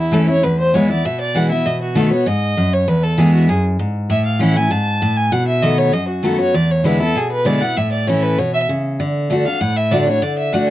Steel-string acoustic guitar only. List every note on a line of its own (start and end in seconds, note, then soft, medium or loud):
0.00 0.40 E2 medium
0.12 0.27 E3 medium
0.12 0.28 A3 medium
0.12 0.28 C#4 medium
0.12 0.27 E4 loud
0.28 0.44 C#4 soft
0.28 0.43 E4 medium
0.44 1.02 E2 medium
0.74 0.89 E3 medium
0.74 0.89 G#3 medium
0.74 0.90 B3 medium
0.74 0.88 E4 medium
0.90 1.05 B3 medium
0.90 1.04 E4 medium
1.05 1.63 B2 medium
1.35 1.50 E3 medium
1.35 1.50 G#3 medium
1.35 1.51 B3 loud
1.35 1.48 E4 loud
1.50 1.66 B3 medium
1.50 1.65 E4 medium
1.66 2.24 B2 medium
1.95 2.11 D#3 medium
1.95 2.11 A3 loud
1.95 2.11 B3 medium
1.95 2.10 F#4 loud
2.11 2.27 B3 soft
2.11 2.26 F#4 medium
2.26 2.55 G#2 medium
2.57 2.86 F#2 medium
2.88 3.46 E2 medium
3.18 3.47 E3 medium
3.18 3.47 G#3 medium
3.18 3.48 B3 medium
3.18 3.48 E4 loud
3.49 3.78 F#2 medium
3.79 4.08 G#2 medium
4.10 4.68 A2 medium
4.39 4.55 E3 medium
4.39 4.55 A3 loud
4.39 4.56 C#4 loud
4.39 4.54 E4 loud
4.55 4.71 C#4 soft
4.55 4.70 E4 medium
4.71 5.00 G#2 medium
5.02 5.31 A2 medium
5.32 5.90 B2 medium
5.62 5.92 D#3 medium
5.62 5.92 A3 medium
5.62 5.92 B3 medium
5.62 5.93 F#4 medium
5.93 6.52 F#2 medium
6.23 6.38 D#3 medium
6.23 6.39 A3 loud
6.23 6.39 B3 loud
6.23 6.38 F#4 loud
6.39 6.55 B3 medium
6.39 6.54 F#4 medium
6.54 7.13 E2 medium
6.84 7.00 D3 medium
6.84 7.00 G#3 loud
6.84 7.00 B3 loud
6.84 6.99 E4 loud
7.00 7.16 B3 medium
7.00 7.15 E4 medium
7.15 7.74 B2 medium
7.45 7.61 D3 medium
7.45 7.61 G#3 medium
7.45 7.62 B3 loud
7.45 7.60 E4 medium
7.61 7.77 B3 medium
7.61 7.76 E4 medium
7.77 8.36 A2 medium
8.07 8.37 E3 medium
8.07 8.37 A3 medium
8.07 8.38 C#4 medium
8.07 8.38 E4 medium
8.38 8.68 B2 medium
8.69 8.98 C#3 medium
9.00 9.29 D3 medium
9.30 9.45 D3 medium
9.30 9.45 A3 medium
9.30 9.46 D4 medium
9.30 9.44 F#4 loud
9.45 9.61 D4 medium
9.45 9.60 F#4 medium
9.61 10.19 A2 medium
9.91 10.06 D3 medium
9.91 10.07 A3 medium
9.91 10.07 D4 loud
9.91 10.06 F#4 loud
10.07 10.23 D4 medium
10.07 10.22 F#4 medium
10.22 10.51 D3 medium
10.52 10.70 D3 medium
10.52 10.70 A3 medium
10.52 10.70 D4 loud
10.52 10.70 F#4 loud